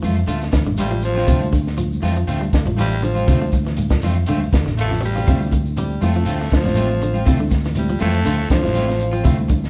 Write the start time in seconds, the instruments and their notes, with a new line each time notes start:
0.03 fingered electric bass F2, clean electric guitar E3 A3 F4, muted clean electric guitar stroke, open hi-hat, high conga, low conga, shekere
0.17 muted clean electric guitar stroke, closed hi-hat, shekere
0.27 fingered electric bass D2, clean electric guitar D3 A3 F4, muted clean electric guitar stroke, closed hi-hat, shekere
0.41 muted clean electric guitar stroke, snare, closed hi-hat, shekere
0.52 fingered electric bass D2, clean electric guitar E3, muted clean electric guitar stroke, kick, snare, closed hi-hat, shekere
0.65 fingered electric bass A1, clean electric guitar D3, high conga, low conga, shekere
0.77 baritone saxophone G3, clean electric guitar A3 C4 F4, closed hi-hat, high conga, shekere
0.90 clean electric guitar F3, muted clean electric guitar stroke, shekere
1.02 baritone saxophone F3, muted clean electric guitar stroke, closed hi-hat, shekere
1.15 clean electric guitar F3 C4 F4, snare, shekere
1.27 fingered electric bass D2, clean electric guitar C3 A3 C4 F4, kick, closed hi-hat, low conga, shekere
1.41 muted clean electric guitar stroke, high conga, shekere
1.52 clean electric guitar D3, muted clean electric guitar stroke, kick, closed hi-hat, high conga, shekere
1.67 snare, shekere
1.77 clean electric guitar F3, muted clean electric guitar stroke, closed hi-hat, shekere
1.91 high conga, shekere
2.02 fingered electric bass F2, clean electric guitar E3 A3 C4 F4, snare, open hi-hat, high conga, low conga, shekere
2.15 clean electric guitar F3, muted clean electric guitar stroke, closed hi-hat, shekere
2.27 fingered electric bass D2, clean electric guitar A3 C4 F4, closed hi-hat, shekere
2.41 clean electric guitar G3, muted clean electric guitar stroke, closed hi-hat, shekere
2.53 fingered electric bass D2, muted clean electric guitar stroke, kick, snare, closed hi-hat, shekere
2.65 fingered electric bass A1, clean electric guitar F3, high conga, low conga, shekere
2.77 clean electric guitar E3 A3 C4 F4, baritone saxophone G3, closed hi-hat, high conga, shekere
2.90 muted clean electric guitar stroke, shekere
3.02 clean electric guitar D3, baritone saxophone F3, muted clean electric guitar stroke, closed hi-hat, shekere
3.15 clean electric guitar C4 F4, closed hi-hat, high conga, shekere
3.27 fingered electric bass D2, clean electric guitar C3 A3 C4 F4, kick, closed hi-hat, low conga, shekere
3.41 clean electric guitar D3, muted clean electric guitar stroke, high conga, shekere
3.52 muted clean electric guitar stroke, kick, closed hi-hat, high conga, shekere
3.66 clean electric guitar E3, snare, shekere
3.77 muted clean electric guitar stroke, closed hi-hat, high conga, shekere
3.89 clean electric guitar F3, kick, snare, closed hi-hat, high conga, shekere
4.02 fingered electric bass F2, clean electric guitar E3 A3 C4 F4, snare, open hi-hat, high conga, low conga, shekere
4.15 muted clean electric guitar stroke, closed hi-hat, shekere
4.26 fingered electric bass D2, clean electric guitar D3 A3 C4 F4, closed hi-hat, high conga, shekere
4.37 muted clean electric guitar stroke, closed hi-hat, high conga
4.42 high conga, shekere
4.53 fingered electric bass D2, clean electric guitar E3, muted clean electric guitar stroke, kick, snare, closed hi-hat, shekere
4.60 low conga
4.66 fingered electric bass A1, clean electric guitar D3, snare, low conga, shekere
4.77 clean electric guitar A3 F4, baritone saxophone A3, closed hi-hat, shekere
4.85 low conga
4.90 clean electric guitar F3, muted clean electric guitar stroke, snare, low conga, shekere
5.00 muted clean electric guitar stroke, open hi-hat, low conga, shekere
5.05 baritone saxophone G3
5.15 clean electric guitar C4 F4, muted clean electric guitar stroke, low conga, shekere
5.26 fingered electric bass D2, clean electric guitar C3 A3 C4 F4, reed electric piano F3 A3 C4 E4, kick, closed hi-hat, low conga, shekere
5.39 muted clean electric guitar stroke, high conga, shekere
5.51 clean electric guitar D3, muted clean electric guitar stroke, kick, closed hi-hat, high conga, shekere
5.66 shekere
5.77 reed electric piano F3 A3 C4 E4, baritone saxophone G3, muted clean electric guitar stroke, closed hi-hat, high conga, shekere
5.91 shekere
6.01 fingered electric bass F2, reed electric piano F3 A3 C4 E4, clean electric guitar A3 C4 F4, baritone saxophone A3, muted clean electric guitar stroke, open hi-hat, high conga, low conga, shekere
6.14 clean electric guitar F3, muted clean electric guitar stroke, closed hi-hat, shekere
6.25 fingered electric bass D2, clean electric guitar A3 C4 F4, closed hi-hat, shekere
6.39 muted clean electric guitar stroke, snare, closed hi-hat, shekere
6.50 fingered electric bass D2, muted clean electric guitar stroke, kick, snare, closed hi-hat, shekere
6.56 baritone saxophone F3
6.64 fingered electric bass A1, reed electric piano F3 A3 C4 D4, clean electric guitar F3, snare, high conga, low conga, shekere
6.74 clean electric guitar A3 C4 F4, closed hi-hat, high conga, shekere
6.88 muted clean electric guitar stroke, shekere
7.01 clean electric guitar D3, muted clean electric guitar stroke, closed hi-hat, shekere
7.13 clean electric guitar C4 F4, closed hi-hat, high conga, shekere
7.25 fingered electric bass D2, clean electric guitar C3 A3 C4 F4, reed electric piano F3 A3 C4 E4, kick, closed hi-hat, low conga, shekere
7.38 clean electric guitar D3, muted clean electric guitar stroke, high conga, shekere
7.50 muted clean electric guitar stroke, kick, snare, closed hi-hat, high conga, shekere
7.63 clean electric guitar E3, snare, shekere
7.75 reed electric piano F3 A3 C4 E4, baritone saxophone G3, muted clean electric guitar stroke, closed hi-hat, high conga, shekere
7.88 clean electric guitar F3, closed hi-hat, high conga, shekere
8.00 fingered electric bass F2, clean electric guitar E3 A3 C4 F4, reed electric piano F3 A3 C4 E4, baritone saxophone A3, open hi-hat, high conga, shekere
8.12 muted clean electric guitar stroke, closed hi-hat, shekere
8.24 fingered electric bass D2, clean electric guitar D3 A3 C4 F4, closed hi-hat, shekere
8.37 muted clean electric guitar stroke, closed hi-hat, shekere
8.49 fingered electric bass D2, clean electric guitar E3, baritone saxophone F3, muted clean electric guitar stroke, kick, snare, closed hi-hat, shekere
8.63 fingered electric bass A1, clean electric guitar D3, reed electric piano F3 A3 C4 E4, snare, high conga, low conga, shekere
8.74 clean electric guitar A3 C4 F4, snare, closed hi-hat, high conga, shekere
8.87 muted clean electric guitar stroke, snare, shekere
8.98 muted clean electric guitar stroke, closed hi-hat, shekere
9.11 clean electric guitar F3 C4 F4, shekere
9.24 fingered electric bass D2, clean electric guitar C3 A3 C4 F4, reed electric piano F3 A3 C4 E4, kick, closed hi-hat, low conga, shekere
9.37 muted clean electric guitar stroke, high conga, shekere
9.48 clean electric guitar D3, muted clean electric guitar stroke, kick, closed hi-hat, high conga, shekere
9.63 snare, shekere